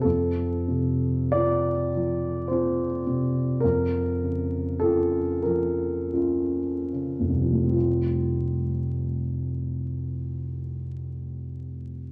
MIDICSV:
0, 0, Header, 1, 2, 480
1, 0, Start_track
1, 0, Key_signature, -1, "major"
1, 0, Tempo, 1295896
1, 14, Time_signature, 3, 2, 24, 8
1, 496, Tempo, 1145038
1, 1456, Tempo, 1183432
1, 1936, Tempo, 1310044
1, 2416, Tempo, 1612903
1, 2896, Tempo, 1481481
1, 4316, End_track
2, 0, Start_track
2, 0, Title_t, "Grand piano"
2, 0, Program_c, 0, 0
2, 0, Control_c, 0, 64, 127
2, 5, Note_on_c, 0, 69, 65
2, 16, Note_on_c, 0, 41, 44
2, 23, Control_c, 0, 64, 0
2, 109, Control_c, 0, 64, 127
2, 251, Note_on_c, 0, 48, 33
2, 488, Note_on_c, 0, 74, 72
2, 492, Note_off_c, 0, 69, 0
2, 498, Note_on_c, 0, 60, 33
2, 501, Note_on_c, 0, 65, 37
2, 651, Note_off_c, 0, 48, 0
2, 732, Note_off_c, 0, 60, 0
2, 734, Note_off_c, 0, 65, 0
2, 751, Note_on_c, 0, 53, 32
2, 973, Note_on_c, 0, 72, 52
2, 978, Note_off_c, 0, 74, 0
2, 986, Note_on_c, 0, 60, 30
2, 988, Note_on_c, 0, 65, 34
2, 1124, Note_off_c, 0, 53, 0
2, 1201, Note_off_c, 0, 60, 0
2, 1202, Note_off_c, 0, 65, 0
2, 1220, Note_on_c, 0, 48, 34
2, 1440, Note_off_c, 0, 41, 0
2, 1445, Note_on_c, 0, 70, 67
2, 1452, Note_off_c, 0, 72, 0
2, 1458, Note_off_c, 0, 48, 0
2, 1459, Note_on_c, 0, 41, 44
2, 1464, Control_c, 0, 64, 0
2, 1540, Control_c, 0, 64, 127
2, 1697, Note_on_c, 0, 49, 34
2, 1929, Note_on_c, 0, 69, 69
2, 1931, Note_off_c, 0, 70, 0
2, 1941, Note_on_c, 0, 61, 37
2, 1943, Note_on_c, 0, 65, 39
2, 2074, Note_off_c, 0, 49, 0
2, 2154, Note_off_c, 0, 61, 0
2, 2154, Note_off_c, 0, 65, 0
2, 2159, Note_on_c, 0, 70, 60
2, 2162, Note_off_c, 0, 69, 0
2, 2170, Note_on_c, 0, 53, 35
2, 2419, Note_on_c, 0, 61, 32
2, 2420, Note_on_c, 0, 65, 36
2, 2555, Note_off_c, 0, 53, 0
2, 2644, Note_off_c, 0, 61, 0
2, 2645, Note_off_c, 0, 65, 0
2, 2652, Note_off_c, 0, 70, 0
2, 2656, Note_on_c, 0, 49, 33
2, 2735, Note_on_c, 0, 29, 34
2, 2766, Note_on_c, 0, 36, 29
2, 2799, Note_on_c, 0, 53, 31
2, 2832, Note_on_c, 0, 57, 29
2, 2866, Note_on_c, 0, 60, 29
2, 2887, Note_off_c, 0, 41, 0
2, 2889, Note_on_c, 0, 65, 40
2, 2898, Note_off_c, 0, 49, 0
2, 2907, Control_c, 0, 64, 0
2, 2981, Control_c, 0, 64, 127
2, 4316, Note_off_c, 0, 29, 0
2, 4316, Note_off_c, 0, 36, 0
2, 4316, Note_off_c, 0, 53, 0
2, 4316, Note_off_c, 0, 57, 0
2, 4316, Note_off_c, 0, 60, 0
2, 4316, Note_off_c, 0, 65, 0
2, 4316, End_track
0, 0, End_of_file